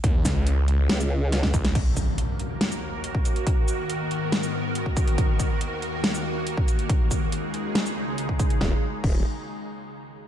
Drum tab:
CC |----------------|x---------------|----------------|----------------|
HH |x-x-x-x-x---x-xx|x-x-x-x-x---x-xx|x-x-x-x-x---x-xx|x-x-x-x-x---x-xx|
SH |--x------x----x-|--x------x----x-|--x------x----x-|--x------x----x-|
SD |--o-----o---oo-o|--------o-------|--------o-------|--------o-------|
BD |o-o----------oo-|o-o----------o--|o------------oo-|o-o----------o--|

CC |----------------|----x-----------|
HH |x-x-x-x-x---x-xx|----------------|
SH |--x------x----x-|----------------|
SD |--------o-------|o---------------|
BD |o-o----------oo-|o---o-----------|